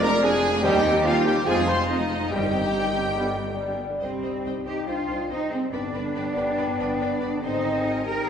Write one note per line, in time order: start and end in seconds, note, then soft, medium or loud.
0.00 0.65 F1 loud
0.00 0.65 F2 loud
0.00 0.66 F3 loud
0.00 0.13 F3 medium
0.00 0.13 D4 medium
0.00 0.66 F4 medium
0.00 0.22 A#4 loud
0.00 0.25 A#4 loud
0.00 0.23 A#4 loud
0.00 0.12 F5 loud
0.00 0.22 G#5 loud
0.00 0.23 A#5 loud
0.00 0.09 A#5 loud
0.13 0.23 G#3 medium
0.13 0.23 F4 medium
0.13 0.43 F5 loud
0.22 0.32 F3 medium
0.22 0.32 D4 medium
0.22 0.61 D4 loud
0.22 0.63 G#4 loud
0.22 0.64 G#4 loud
0.22 0.63 G#4 loud
0.22 0.63 G#5 loud
0.22 0.66 G#5 loud
0.32 0.44 G#3 medium
0.32 0.43 F4 loud
0.32 0.66 D6 loud
0.43 0.54 F3 medium
0.43 0.54 D4 medium
0.43 0.66 F5 loud
0.53 0.64 G#3 medium
0.53 0.64 F4 medium
0.53 0.66 D5 medium
0.62 1.47 D#2 loud
0.62 1.48 D#2 loud
0.62 0.73 D#3 loud
0.62 0.78 D#3 loud
0.62 1.49 D#3 loud
0.62 0.78 G3 loud
0.62 0.73 C4 loud
0.62 0.78 C4 loud
0.62 1.04 D#4 loud
0.62 0.78 G4 loud
0.62 1.07 G4 loud
0.62 1.05 G4 loud
0.62 1.05 G5 loud
0.74 0.85 G3 loud
0.74 1.58 C4 medium
0.74 0.85 D#4 medium
0.84 0.95 D#3 loud
0.84 0.95 C4 loud
0.95 1.06 G3 medium
0.95 1.05 D#4 medium
0.95 1.36 G4 medium
1.04 1.15 D#3 medium
1.04 1.15 C4 medium
1.04 1.26 F4 loud
1.04 1.27 F4 loud
1.04 1.45 G4 loud
1.04 1.26 F5 loud
1.04 1.50 G5 medium
1.14 1.26 G3 medium
1.14 1.26 D#4 medium
1.14 1.99 C6 medium
1.25 1.36 D#3 medium
1.25 1.37 C4 medium
1.25 1.33 G4 loud
1.25 1.46 G4 loud
1.25 1.47 G4 loud
1.25 1.68 C5 loud
1.25 1.34 G5 loud
1.25 1.47 G5 loud
1.36 1.47 G3 medium
1.36 1.47 D#4 medium
1.46 2.30 F1 loud
1.46 2.31 F2 loud
1.46 2.34 F2 loud
1.46 1.56 F3 loud
1.46 1.61 F3 loud
1.46 1.61 G#3 loud
1.46 1.56 C4 loud
1.46 1.61 C4 loud
1.46 1.61 F4 loud
1.46 2.33 F4 loud
1.46 1.56 G#4 loud
1.46 1.68 G#4 loud
1.46 1.54 G#5 loud
1.46 1.69 G#5 loud
1.57 1.69 G#3 medium
1.57 3.19 C4 medium
1.57 1.68 D#4 medium
1.67 1.79 F3 medium
1.67 1.79 C4 medium
1.67 1.89 C5 loud
1.67 1.90 C5 loud
1.67 1.78 C5 loud
1.67 1.89 C6 loud
1.67 1.88 C6 loud
1.79 1.90 G#3 medium
1.79 1.90 D#4 medium
1.79 2.20 G#4 medium
1.88 2.00 F3 medium
1.88 2.00 C4 medium
1.88 2.30 D#4 loud
1.88 2.31 D#4 medium
1.88 2.32 D#4 loud
1.88 2.30 D#5 loud
1.88 2.33 D#5 loud
1.88 2.34 G#5 medium
2.00 2.11 G#3 medium
2.00 2.11 D#4 medium
2.00 2.84 C6 medium
2.10 2.21 F3 medium
2.10 2.21 C4 medium
2.10 2.53 C5 medium
2.20 2.32 G#3 medium
2.20 2.32 D#4 medium
2.20 2.34 G#4 medium
2.30 3.78 G1 loud
2.30 3.16 G2 loud
2.30 3.78 G2 medium
2.30 2.46 D#3 medium
2.30 2.42 G3 medium
2.30 2.47 G3 loud
2.30 2.42 C4 medium
2.30 2.47 C4 medium
2.30 3.79 D#4 loud
2.30 3.75 G4 medium
2.30 3.76 G4 loud
2.30 3.79 G4 loud
2.30 2.47 G4 loud
2.30 3.79 G5 loud
2.41 2.53 D#3 medium
2.41 2.53 D#4 medium
2.41 3.18 D#4 medium
2.52 2.64 G3 medium
2.52 2.63 C4 medium
2.52 3.05 C5 medium
2.62 2.74 D#3 medium
2.62 2.74 D#4 medium
2.62 2.95 D#5 medium
2.74 2.84 G3 medium
2.74 2.84 C4 medium
2.74 3.58 G5 medium
2.85 2.96 D#3 medium
2.85 2.95 D#4 medium
2.85 3.19 C6 medium
2.95 3.06 G3 medium
2.95 3.06 C4 medium
2.95 3.18 D#5 medium
3.05 3.16 D#3 medium
3.05 3.16 D#4 medium
3.05 3.19 C5 medium
3.16 4.03 G2 medium
3.16 3.31 D3 medium
3.16 3.31 G3 medium
3.16 3.27 G3 medium
3.16 3.31 B3 medium
3.16 3.26 B3 medium
3.16 3.31 G4 medium
3.27 3.37 D3 medium
3.27 3.37 D4 medium
3.27 4.03 D4 medium
3.38 3.48 G3 medium
3.38 3.48 B3 medium
3.38 3.89 B4 medium
3.48 3.58 D3 medium
3.48 3.58 D4 medium
3.48 3.79 D5 medium
3.58 3.68 G3 medium
3.58 3.68 B3 medium
3.58 4.65 G5 medium
3.69 3.80 D3 medium
3.69 3.80 D4 medium
3.69 4.03 B5 medium
3.79 3.90 G3 medium
3.79 3.90 B3 medium
3.91 4.01 D3 medium
3.91 4.01 D4 medium
3.91 4.03 B4 medium
4.01 4.09 C2 medium
4.01 5.75 C3 medium
4.01 4.62 G3 medium
4.01 4.62 C4 medium
4.01 4.09 C5 medium
4.01 4.09 D#5 medium
4.01 4.11 G5 medium
4.12 5.61 G3 medium
4.22 4.30 C2 medium
4.22 5.50 D#4 medium
4.22 4.31 C5 medium
4.22 4.32 D#5 medium
4.22 4.33 G5 medium
4.34 5.39 G4 soft
4.44 4.52 C2 medium
4.44 5.29 C5 medium
4.44 4.54 C5 medium
4.44 4.53 D#5 medium
4.44 4.55 G5 medium
4.56 5.18 D#5 medium
4.65 4.73 C2 medium
4.65 4.88 D#4 medium
4.65 4.87 G4 medium
4.65 4.74 C5 medium
4.65 4.75 D#5 medium
4.65 4.86 G5 medium
4.65 4.75 G5 medium
4.77 4.97 C6 medium
4.87 4.95 C2 medium
4.87 5.30 D4 medium
4.87 5.30 F4 medium
4.87 5.69 C5 medium
4.87 4.97 C5 medium
4.87 4.97 D#5 medium
4.87 5.07 G5 medium
4.87 4.97 G5 medium
4.98 5.75 C6 medium
5.08 5.17 C2 medium
5.08 5.18 C5 medium
5.08 5.18 D#5 medium
5.08 6.36 G5 medium
5.08 5.20 G5 medium
5.19 5.75 D#5 medium
5.30 5.38 C2 medium
5.30 5.39 C4 medium
5.30 5.51 D#4 loud
5.30 5.75 C5 medium
5.30 5.39 C5 medium
5.30 5.39 D#5 medium
5.30 5.39 G5 medium
5.41 6.04 G4 medium
5.50 5.59 C2 medium
5.50 5.60 G#3 medium
5.50 5.73 C4 medium
5.50 5.75 D#4 medium
5.50 5.60 C5 medium
5.50 5.60 D#5 medium
5.50 5.61 G5 medium
5.62 7.46 G3 soft
5.71 5.80 G1 medium
5.71 7.46 G2 medium
5.71 7.40 B3 loud
5.71 7.41 D4 loud
5.71 6.15 B4 medium
5.71 5.81 B4 medium
5.71 5.81 D5 medium
5.71 5.81 G5 medium
5.71 5.81 B5 medium
5.84 7.33 D3 medium
5.94 6.02 G1 medium
5.94 7.22 D4 medium
5.94 6.03 B4 medium
5.94 6.03 D5 medium
5.94 6.03 G5 medium
5.94 6.02 B5 medium
6.05 7.11 G4 medium
6.16 6.24 G1 medium
6.16 6.59 G4 medium
6.16 7.01 B4 medium
6.16 6.24 B4 medium
6.16 6.24 D5 medium
6.16 6.24 G5 medium
6.16 6.24 B5 medium
6.27 6.90 D5 medium
6.36 6.46 G1 medium
6.36 6.45 B4 medium
6.36 6.45 D5 medium
6.36 6.44 G5 medium
6.36 6.58 G5 medium
6.36 6.45 B5 medium
6.49 6.69 B5 medium
6.57 6.66 G1 medium
6.57 6.66 B4 medium
6.57 7.02 B4 medium
6.57 6.66 D5 medium
6.57 6.66 G5 medium
6.57 6.79 G5 medium
6.57 6.65 B5 medium
6.70 7.46 B5 medium
6.80 6.88 G1 medium
6.80 6.88 B4 medium
6.80 6.88 D5 medium
6.80 6.88 G5 medium
6.80 6.88 B5 medium
6.91 7.46 D5 medium
7.01 7.10 G1 medium
7.01 7.09 B4 medium
7.01 7.46 B4 medium
7.01 7.10 D5 medium
7.01 7.44 D5 medium
7.01 7.09 G5 medium
7.01 7.10 B5 medium
7.12 7.46 G4 medium
7.21 7.32 G1 medium
7.21 7.46 D4 medium
7.21 7.30 B4 medium
7.21 7.29 D5 medium
7.21 7.29 G5 medium
7.21 7.29 B5 medium
7.34 7.46 D3 medium
7.42 8.25 G#1 medium
7.42 8.29 G#2 medium
7.42 8.05 C4 medium
7.42 8.06 D#4 loud
7.42 7.83 C5 medium
7.42 7.86 C5 medium
7.42 8.24 D#5 medium
7.42 8.24 G#5 medium
7.55 8.29 D#3 medium
7.76 7.96 D#4 medium
7.85 8.28 A#4 medium
7.85 8.29 C5 medium
7.85 8.29 D#5 medium
7.97 8.29 D#4 medium
8.06 8.27 G4 loud
8.06 8.29 A#4 loud
8.06 8.29 D#5 medium